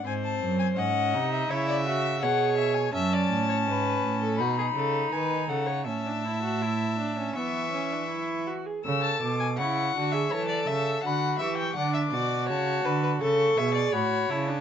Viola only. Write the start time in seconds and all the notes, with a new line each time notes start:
0.05 C4
0.77 C#4
1.14 D#4
1.50 E4
1.86 F#4
2.22 G#4
2.93 C#4
4.39 D#4
5.88 C#4
6.06 D4
6.25 E4
6.42 F#4
6.62 E4
6.98 D4
7.18 C#4
7.36 B3
7.73 C#4
7.92 D4
8.09 E4
8.47 F#4
8.66 G#4
8.84 A4
9.59 E4
9.95 F#4
10.14 G#4
10.32 A4
11.05 F#4
11.41 G4
11.78 D4
12.13 F#4
13.21 A4
13.58 G#4
13.93 F#4
14.30 E4
14.48 D4